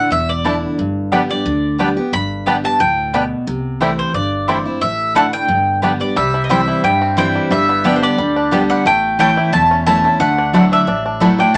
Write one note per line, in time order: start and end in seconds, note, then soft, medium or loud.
0.00 0.10 E4 medium
0.00 0.11 F#5 medium
0.10 0.63 E1 medium
0.10 0.75 E2 medium
0.10 0.30 E5 medium
0.29 0.60 D5 medium
0.44 0.76 D3 medium
0.44 0.54 A3 medium
0.44 0.77 A3 medium
0.44 0.53 A3 medium
0.44 0.77 D4 medium
0.44 0.48 D4 medium
0.44 0.54 E4 medium
0.44 0.77 E4 medium
0.44 0.55 D5 medium
0.44 0.55 A5 medium
0.78 1.31 G1 medium
0.78 1.43 G2 medium
1.12 1.29 D3 medium
1.12 1.20 G3 medium
1.12 1.29 G3 medium
1.12 1.21 B3 medium
1.12 1.29 B3 medium
1.12 1.20 B3 medium
1.12 1.20 D4 medium
1.12 1.21 G4 medium
1.12 1.28 G4 medium
1.12 1.22 D5 loud
1.12 1.22 G5 medium
1.29 1.46 B3 medium
1.29 1.45 G4 medium
1.29 1.93 D5 medium
1.45 1.98 D2 medium
1.45 1.77 D3 medium
1.78 1.96 D3 medium
1.78 1.96 G3 medium
1.78 1.87 G3 medium
1.78 1.89 B3 medium
1.78 1.96 B3 medium
1.78 1.88 B3 medium
1.78 1.88 D4 medium
1.78 1.89 G4 medium
1.78 1.95 G4 medium
1.78 1.89 D5 loud
1.78 1.89 G5 medium
1.97 2.13 B3 medium
1.97 2.12 G4 medium
2.12 2.65 G1 medium
2.12 2.77 G2 medium
2.12 2.64 B5 loud
2.46 2.63 D3 medium
2.46 2.64 G3 medium
2.46 2.55 G3 medium
2.46 2.56 B3 medium
2.46 2.64 B3 medium
2.46 2.55 B3 medium
2.46 2.55 D4 medium
2.46 2.56 G4 loud
2.46 2.63 G4 medium
2.46 2.56 D5 medium
2.46 2.56 G5 loud
2.64 2.80 B3 soft
2.64 2.79 G4 medium
2.64 2.80 A5 loud
2.80 3.32 D2 medium
2.80 3.12 A2 medium
2.80 3.28 G5 medium
3.13 3.46 B2 medium
3.13 3.22 G3 medium
3.13 3.23 B3 medium
3.13 3.22 B3 medium
3.13 3.22 D4 medium
3.13 3.23 G4 medium
3.13 3.23 D5 medium
3.13 3.24 G5 medium
3.47 3.99 C2 medium
3.47 4.11 C3 medium
3.81 4.13 E3 medium
3.81 3.89 G3 medium
3.81 3.90 A3 medium
3.81 4.13 A3 medium
3.81 4.13 C4 medium
3.81 3.89 C4 medium
3.81 3.90 E4 medium
3.81 4.14 E4 medium
3.81 3.89 E4 medium
3.81 3.91 C5 medium
3.81 3.91 G5 medium
3.99 4.14 C5 medium
4.14 4.67 G1 medium
4.14 4.79 G2 medium
4.14 4.78 D5 medium
4.48 4.65 E3 medium
4.48 4.56 G3 medium
4.48 4.57 A3 medium
4.48 4.65 A3 medium
4.48 4.66 C4 medium
4.48 4.56 C4 medium
4.48 4.58 E4 medium
4.48 4.57 E4 medium
4.48 4.64 E4 medium
4.48 4.58 C5 medium
4.48 4.58 G5 loud
4.65 4.82 C4 medium
4.65 4.81 E4 medium
4.81 5.34 A1 medium
4.81 5.46 A2 medium
4.81 5.13 E5 loud
5.15 5.47 D3 medium
5.15 5.25 A3 medium
5.15 5.47 A3 medium
5.15 5.24 A3 medium
5.15 5.48 D4 medium
5.15 5.19 D4 medium
5.15 5.25 E4 medium
5.15 5.48 E4 medium
5.15 5.25 D5 loud
5.15 5.32 F#5 loud
5.15 5.25 A5 loud
5.33 5.79 G5 loud
5.48 6.01 G1 loud
5.48 6.13 G2 medium
5.82 5.99 D3 medium
5.82 6.00 G3 medium
5.82 5.91 G3 medium
5.82 5.92 B3 medium
5.82 6.00 B3 medium
5.82 5.91 B3 medium
5.82 5.91 D4 medium
5.82 5.92 G4 medium
5.82 5.99 G4 medium
5.82 5.92 D5 medium
5.82 5.92 G5 medium
6.00 6.16 B3 medium
6.00 6.15 G4 medium
6.00 6.17 D5 medium
6.16 6.69 C2 medium
6.16 6.80 C3 medium
6.16 6.50 G3 medium
6.16 6.42 E5 medium
6.34 6.67 E4 medium
6.44 6.50 D#5 medium
6.49 6.82 E3 medium
6.49 6.82 G3 medium
6.49 6.83 G3 medium
6.49 6.59 C4 medium
6.49 6.82 C4 medium
6.49 6.59 E4 medium
6.49 6.82 E4 medium
6.49 6.60 C5 loud
6.49 6.84 E5 medium
6.49 6.60 G5 loud
6.68 7.14 E4 medium
6.83 7.36 G2 medium
6.83 7.48 G2 medium
6.83 7.31 G3 medium
6.83 7.15 G5 medium
7.01 7.48 C4 medium
7.17 7.49 E3 medium
7.17 7.49 G3 loud
7.17 7.27 C4 medium
7.17 7.50 C4 medium
7.17 7.27 E4 medium
7.17 7.51 E4 soft
7.17 7.50 E4 medium
7.17 7.27 C5 medium
7.17 7.27 G5 loud
7.17 7.49 G5 medium
7.35 7.50 G3 medium
7.51 8.03 G1 medium
7.51 8.15 G2 medium
7.51 7.99 G3 medium
7.51 7.97 E5 medium
7.69 8.15 B3 medium
7.84 8.16 D3 medium
7.84 8.16 G3 medium
7.84 7.94 B3 medium
7.84 8.17 B3 medium
7.84 8.33 D4 medium
7.84 7.94 G4 medium
7.84 8.17 G4 medium
7.84 7.94 D5 loud
7.84 7.94 G5 loud
7.96 8.03 C5 medium
8.02 8.49 G4 medium
8.02 8.72 D5 medium
8.18 8.70 D2 medium
8.18 8.50 D3 medium
8.18 8.66 G3 medium
8.36 8.82 D4 medium
8.51 8.84 D3 medium
8.51 8.84 G3 medium
8.51 8.61 B3 medium
8.51 8.84 B3 medium
8.51 8.61 G4 medium
8.51 8.86 G4 medium
8.51 8.84 G4 medium
8.51 8.62 D5 medium
8.51 8.62 G5 medium
8.70 8.86 G3 medium
8.70 8.86 F#5 medium
8.85 9.38 A1 medium
8.85 9.50 A2 medium
8.85 9.19 A3 medium
8.85 9.19 G5 loud
9.19 9.51 E3 medium
9.19 9.29 A3 loud
9.19 9.51 A3 medium
9.19 9.53 A3 medium
9.19 9.52 C#4 medium
9.19 9.29 E4 medium
9.19 9.52 E4 medium
9.19 9.29 C#5 medium
9.19 9.52 G5 loud
9.19 9.29 A5 loud
9.37 9.86 E4 medium
9.52 10.05 E1 medium
9.52 10.17 E2 medium
9.52 10.04 A3 medium
9.52 9.84 A5 loud
9.71 10.17 C#4 medium
9.86 10.03 E3 medium
9.86 9.96 A3 medium
9.86 10.04 A3 loud
9.86 10.04 C#4 loud
9.86 10.38 E4 medium
9.86 9.96 E4 medium
9.86 10.03 E4 loud
9.86 9.96 C#5 loud
9.86 10.19 A5 loud
9.86 9.96 A5 loud
10.04 10.20 A3 medium
10.04 10.20 C#4 medium
10.04 10.19 E4 medium
10.20 10.72 D2 loud
10.20 10.84 D3 medium
10.20 10.54 A3 medium
10.20 10.73 F#5 loud
10.38 10.72 D4 medium
10.53 10.86 F#3 medium
10.53 10.63 A3 medium
10.53 10.86 A3 loud
10.53 11.02 A3 medium
10.53 10.64 E4 medium
10.53 10.86 E4 medium
10.53 10.86 F#4 medium
10.53 10.64 D5 medium
10.53 10.64 F#5 loud
10.72 10.88 D4 medium
10.72 11.36 E5 loud
10.87 11.40 A1 medium
10.87 11.51 A2 medium
10.87 11.05 D4 medium
11.06 11.39 D4 medium
11.20 11.38 F#3 medium
11.20 11.30 A3 medium
11.20 11.38 A3 medium
11.20 11.53 A3 medium
11.20 11.31 E4 medium
11.20 11.38 E4 loud
11.20 11.37 F#4 medium
11.20 11.31 D5 medium
11.20 11.31 F#5 medium
11.38 11.57 D4 medium
11.38 11.55 E4 medium
11.38 11.54 F#4 medium
11.38 11.55 G5 medium
11.54 11.57 D2 loud
11.54 11.57 D3 medium